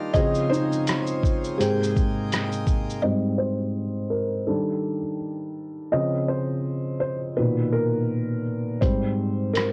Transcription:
Already playing: pipe organ D#3 G3 A#3 D4 F4, felt piano D#3 G3 D4 A#4
0.14 felt piano C#3 F3 C4 G#4 D#5, pipe organ C#3 G#3 C4 D#4, kick, closed hi-hat, shaker
0.35 shaker
0.50 felt piano D#4 C5, shaker
0.72 shaker
0.87 cross-stick, closed hi-hat, shaker
1.07 shaker
1.23 kick, shaker
1.44 shaker
1.58 felt piano G#2 C4 G4 G#4, pipe organ C3 A#3 G5, closed hi-hat, shaker
1.83 shaker
1.96 kick, shaker
2.32 cross-stick, closed hi-hat, shaker
2.52 shaker
2.67 kick, shaker
2.90 shaker
3.02 felt piano G#2 G3 C4 D#5
3.38 felt piano C5
4.10 felt piano A#4
4.47 felt piano D#3 G3 D4 A4
5.92 felt piano C#3 F3 C4 D#5
6.28 felt piano C5
7.00 felt piano C5
7.37 felt piano A#2 B2 D#3 B4
7.73 felt piano A#4
8.81 felt piano G#2 G3 C4 C5, kick, closed hi-hat
9.53 felt piano A#4, cross-stick, closed hi-hat

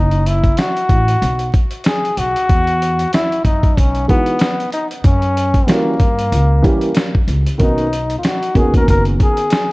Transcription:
Already playing: upright bass F#1, trombone D#4
0.11 closed hi-hat
0.26 trombone E4, closed hi-hat
0.44 kick, closed hi-hat
0.57 trombone F#4, snare, closed hi-hat
0.77 closed hi-hat
0.89 upright bass A1, kick, closed hi-hat
1.08 closed hi-hat
1.22 upright bass B1, closed hi-hat
1.39 closed hi-hat
1.54 kick, closed hi-hat
1.71 closed hi-hat
1.84 trombone G#4, snare, closed hi-hat
2.05 closed hi-hat
2.17 upright bass B1, trombone F#4, closed hi-hat
2.36 closed hi-hat
2.49 upright bass E2, kick, closed hi-hat
2.67 closed hi-hat
2.82 closed hi-hat
2.99 closed hi-hat
3.13 trombone E4, snare, closed hi-hat
3.32 closed hi-hat
3.45 upright bass F#2, trombone D#4, kick, closed hi-hat
3.63 kick, closed hi-hat
3.77 upright bass B1, trombone C#4, kick, closed hi-hat
3.95 closed hi-hat
4.07 upright piano E3 G#3 B3 D#4 F#4, trombone B3, kick, closed hi-hat
4.26 closed hi-hat
4.39 snare, closed hi-hat
4.60 closed hi-hat
4.72 trombone D#4, closed hi-hat
4.91 closed hi-hat
5.04 upright bass F#2, trombone C#4, kick, closed hi-hat
5.22 closed hi-hat
5.37 closed hi-hat
5.54 kick, closed hi-hat
5.67 upright piano E3 G3 A#3 C#4 F#4, trombone A#3, snare, closed hi-hat
6.00 upright bass G2, kick, closed hi-hat
6.19 closed hi-hat
6.32 upright bass C#2, closed hi-hat
6.62 upright piano E3 G3 A#3 C#4 G4, kick, closed hi-hat
6.81 closed hi-hat
6.95 snare, closed hi-hat
7.15 kick
7.27 upright bass C#2, closed hi-hat
7.46 closed hi-hat
7.58 upright bass B1, upright piano D#3 A#3 B3 C#4 F#4, trombone D#4, kick, closed hi-hat
7.78 closed hi-hat
7.93 closed hi-hat
8.10 closed hi-hat
8.18 trombone F4
8.23 trombone F#4, snare, closed hi-hat
8.43 closed hi-hat
8.54 upright bass D#2, upright piano D#3 A#3 B3 C#4 F#4, trombone G#4, kick, closed hi-hat
8.74 trombone A#4, kick, closed hi-hat
8.88 upright bass F#1, trombone A#4, kick, closed hi-hat
9.05 closed hi-hat
9.20 trombone G#4, kick, closed hi-hat
9.37 closed hi-hat
9.50 snare, closed hi-hat

